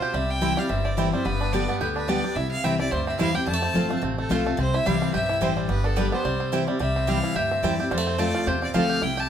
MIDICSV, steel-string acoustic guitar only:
0, 0, Header, 1, 2, 480
1, 0, Start_track
1, 0, Key_signature, 0, "major"
1, 0, Tempo, 277521
1, 242, Time_signature, 4, 2, 24, 8
1, 16070, End_track
2, 0, Start_track
2, 0, Title_t, "Steel-string acoustic guitar"
2, 0, Program_c, 0, 25
2, 0, Note_on_c, 0, 47, 90
2, 222, Note_off_c, 0, 47, 0
2, 247, Note_on_c, 0, 48, 89
2, 717, Note_on_c, 0, 52, 91
2, 718, Note_on_c, 0, 55, 96
2, 732, Note_on_c, 0, 60, 87
2, 744, Note_on_c, 0, 64, 101
2, 973, Note_off_c, 0, 64, 0
2, 975, Note_off_c, 0, 52, 0
2, 976, Note_off_c, 0, 55, 0
2, 983, Note_off_c, 0, 60, 0
2, 994, Note_on_c, 0, 64, 62
2, 1021, Note_on_c, 0, 60, 47
2, 1163, Note_off_c, 0, 48, 0
2, 1195, Note_on_c, 0, 43, 86
2, 1197, Note_off_c, 0, 64, 0
2, 1210, Note_off_c, 0, 60, 0
2, 1678, Note_on_c, 0, 52, 98
2, 1688, Note_on_c, 0, 55, 97
2, 1702, Note_on_c, 0, 60, 93
2, 1711, Note_on_c, 0, 64, 100
2, 1923, Note_off_c, 0, 64, 0
2, 1936, Note_off_c, 0, 52, 0
2, 1942, Note_off_c, 0, 55, 0
2, 1944, Note_on_c, 0, 64, 60
2, 1949, Note_off_c, 0, 60, 0
2, 1975, Note_on_c, 0, 60, 50
2, 2117, Note_off_c, 0, 43, 0
2, 2152, Note_off_c, 0, 64, 0
2, 2162, Note_on_c, 0, 43, 90
2, 2168, Note_off_c, 0, 60, 0
2, 2639, Note_on_c, 0, 50, 87
2, 2652, Note_on_c, 0, 55, 84
2, 2661, Note_on_c, 0, 59, 90
2, 2671, Note_on_c, 0, 67, 88
2, 2876, Note_off_c, 0, 67, 0
2, 2897, Note_off_c, 0, 50, 0
2, 2897, Note_on_c, 0, 67, 60
2, 2904, Note_off_c, 0, 55, 0
2, 2908, Note_off_c, 0, 59, 0
2, 2934, Note_on_c, 0, 59, 45
2, 3081, Note_off_c, 0, 43, 0
2, 3109, Note_off_c, 0, 67, 0
2, 3127, Note_off_c, 0, 59, 0
2, 3128, Note_on_c, 0, 50, 84
2, 3569, Note_off_c, 0, 50, 0
2, 3590, Note_on_c, 0, 50, 91
2, 3600, Note_on_c, 0, 55, 84
2, 3612, Note_on_c, 0, 59, 94
2, 3622, Note_on_c, 0, 67, 92
2, 3844, Note_off_c, 0, 67, 0
2, 3853, Note_off_c, 0, 50, 0
2, 3858, Note_off_c, 0, 55, 0
2, 3864, Note_off_c, 0, 59, 0
2, 3864, Note_on_c, 0, 67, 61
2, 3896, Note_on_c, 0, 59, 52
2, 4073, Note_off_c, 0, 67, 0
2, 4082, Note_on_c, 0, 48, 87
2, 4089, Note_off_c, 0, 59, 0
2, 4571, Note_on_c, 0, 52, 86
2, 4583, Note_on_c, 0, 55, 92
2, 4596, Note_on_c, 0, 60, 106
2, 4600, Note_on_c, 0, 64, 105
2, 4816, Note_off_c, 0, 64, 0
2, 4824, Note_off_c, 0, 52, 0
2, 4830, Note_off_c, 0, 55, 0
2, 4836, Note_on_c, 0, 64, 65
2, 4837, Note_off_c, 0, 60, 0
2, 4870, Note_on_c, 0, 60, 47
2, 5001, Note_off_c, 0, 48, 0
2, 5039, Note_off_c, 0, 64, 0
2, 5049, Note_on_c, 0, 43, 77
2, 5056, Note_off_c, 0, 60, 0
2, 5515, Note_on_c, 0, 52, 89
2, 5520, Note_on_c, 0, 55, 96
2, 5533, Note_on_c, 0, 60, 96
2, 5546, Note_on_c, 0, 64, 106
2, 5758, Note_off_c, 0, 64, 0
2, 5776, Note_off_c, 0, 52, 0
2, 5779, Note_off_c, 0, 55, 0
2, 5779, Note_on_c, 0, 64, 62
2, 5786, Note_off_c, 0, 60, 0
2, 5819, Note_on_c, 0, 60, 49
2, 5965, Note_off_c, 0, 43, 0
2, 5991, Note_off_c, 0, 64, 0
2, 5993, Note_on_c, 0, 41, 89
2, 6011, Note_off_c, 0, 60, 0
2, 6460, Note_on_c, 0, 53, 85
2, 6474, Note_on_c, 0, 57, 89
2, 6484, Note_on_c, 0, 60, 94
2, 6494, Note_on_c, 0, 65, 95
2, 6707, Note_off_c, 0, 65, 0
2, 6728, Note_on_c, 0, 65, 61
2, 6729, Note_off_c, 0, 53, 0
2, 6736, Note_off_c, 0, 57, 0
2, 6736, Note_off_c, 0, 60, 0
2, 6756, Note_on_c, 0, 60, 52
2, 6917, Note_off_c, 0, 41, 0
2, 6945, Note_off_c, 0, 65, 0
2, 6945, Note_on_c, 0, 48, 87
2, 6960, Note_off_c, 0, 60, 0
2, 7423, Note_on_c, 0, 53, 87
2, 7435, Note_on_c, 0, 57, 96
2, 7444, Note_on_c, 0, 60, 97
2, 7452, Note_on_c, 0, 65, 106
2, 7667, Note_off_c, 0, 65, 0
2, 7687, Note_on_c, 0, 65, 63
2, 7690, Note_off_c, 0, 53, 0
2, 7696, Note_off_c, 0, 60, 0
2, 7697, Note_off_c, 0, 57, 0
2, 7717, Note_on_c, 0, 60, 49
2, 7873, Note_off_c, 0, 48, 0
2, 7905, Note_off_c, 0, 65, 0
2, 7907, Note_on_c, 0, 48, 93
2, 7920, Note_off_c, 0, 60, 0
2, 8394, Note_on_c, 0, 52, 94
2, 8412, Note_on_c, 0, 55, 94
2, 8422, Note_on_c, 0, 60, 98
2, 8424, Note_on_c, 0, 64, 90
2, 8834, Note_off_c, 0, 48, 0
2, 8859, Note_off_c, 0, 52, 0
2, 8868, Note_off_c, 0, 55, 0
2, 8873, Note_off_c, 0, 60, 0
2, 8874, Note_off_c, 0, 64, 0
2, 8892, Note_on_c, 0, 43, 82
2, 9352, Note_on_c, 0, 52, 87
2, 9356, Note_on_c, 0, 55, 97
2, 9369, Note_on_c, 0, 60, 96
2, 9382, Note_on_c, 0, 64, 97
2, 9806, Note_off_c, 0, 43, 0
2, 9818, Note_off_c, 0, 52, 0
2, 9820, Note_off_c, 0, 55, 0
2, 9826, Note_off_c, 0, 60, 0
2, 9832, Note_off_c, 0, 64, 0
2, 9838, Note_on_c, 0, 43, 93
2, 10318, Note_on_c, 0, 50, 82
2, 10329, Note_on_c, 0, 55, 97
2, 10339, Note_on_c, 0, 59, 92
2, 10345, Note_on_c, 0, 67, 101
2, 10565, Note_off_c, 0, 67, 0
2, 10578, Note_off_c, 0, 50, 0
2, 10583, Note_off_c, 0, 55, 0
2, 10585, Note_on_c, 0, 67, 54
2, 10588, Note_off_c, 0, 59, 0
2, 10618, Note_on_c, 0, 59, 49
2, 10759, Note_off_c, 0, 43, 0
2, 10794, Note_off_c, 0, 67, 0
2, 10809, Note_on_c, 0, 48, 81
2, 10810, Note_off_c, 0, 59, 0
2, 11278, Note_on_c, 0, 52, 89
2, 11291, Note_on_c, 0, 55, 103
2, 11295, Note_on_c, 0, 60, 94
2, 11308, Note_on_c, 0, 64, 106
2, 11516, Note_off_c, 0, 64, 0
2, 11536, Note_on_c, 0, 64, 53
2, 11537, Note_off_c, 0, 52, 0
2, 11544, Note_off_c, 0, 55, 0
2, 11546, Note_off_c, 0, 60, 0
2, 11573, Note_on_c, 0, 60, 48
2, 11724, Note_off_c, 0, 48, 0
2, 11749, Note_off_c, 0, 64, 0
2, 11751, Note_on_c, 0, 48, 93
2, 11767, Note_off_c, 0, 60, 0
2, 12232, Note_on_c, 0, 52, 94
2, 12242, Note_on_c, 0, 55, 96
2, 12248, Note_on_c, 0, 60, 95
2, 12260, Note_on_c, 0, 64, 99
2, 12674, Note_off_c, 0, 48, 0
2, 12696, Note_off_c, 0, 52, 0
2, 12701, Note_off_c, 0, 55, 0
2, 12704, Note_off_c, 0, 60, 0
2, 12710, Note_off_c, 0, 64, 0
2, 12718, Note_on_c, 0, 43, 82
2, 13189, Note_on_c, 0, 52, 93
2, 13205, Note_on_c, 0, 55, 93
2, 13209, Note_on_c, 0, 60, 87
2, 13222, Note_on_c, 0, 64, 98
2, 13452, Note_off_c, 0, 52, 0
2, 13452, Note_off_c, 0, 64, 0
2, 13459, Note_off_c, 0, 55, 0
2, 13462, Note_off_c, 0, 60, 0
2, 13473, Note_on_c, 0, 64, 62
2, 13505, Note_on_c, 0, 60, 52
2, 13637, Note_off_c, 0, 43, 0
2, 13676, Note_off_c, 0, 64, 0
2, 13692, Note_off_c, 0, 60, 0
2, 13695, Note_on_c, 0, 41, 89
2, 14153, Note_on_c, 0, 53, 93
2, 14166, Note_on_c, 0, 57, 88
2, 14174, Note_on_c, 0, 60, 95
2, 14188, Note_on_c, 0, 65, 97
2, 14605, Note_off_c, 0, 41, 0
2, 14616, Note_off_c, 0, 53, 0
2, 14622, Note_off_c, 0, 57, 0
2, 14626, Note_off_c, 0, 60, 0
2, 14633, Note_off_c, 0, 65, 0
2, 14641, Note_on_c, 0, 48, 80
2, 15112, Note_on_c, 0, 53, 89
2, 15126, Note_on_c, 0, 57, 100
2, 15136, Note_on_c, 0, 60, 108
2, 15141, Note_on_c, 0, 65, 95
2, 15557, Note_off_c, 0, 48, 0
2, 15574, Note_off_c, 0, 53, 0
2, 15581, Note_off_c, 0, 57, 0
2, 15586, Note_off_c, 0, 60, 0
2, 15588, Note_off_c, 0, 65, 0
2, 15598, Note_on_c, 0, 48, 92
2, 16070, Note_off_c, 0, 48, 0
2, 16070, End_track
0, 0, End_of_file